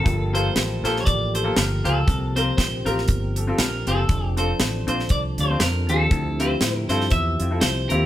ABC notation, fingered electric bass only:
X:1
M:4/4
L:1/8
Q:"Swing" 1/4=119
K:F
V:1 name="Fingered electric bass" clef=bass
G,,,2 A,,, B,,, A,,,2 G,,, _D,, | C,,2 B,,, A,,, G,,,2 B,,, _G,,, | F,,,2 A,,, B,,, C,, D,, F,, _E,, | D,,2 A,, G,, E,, F,, C,, _E,, |]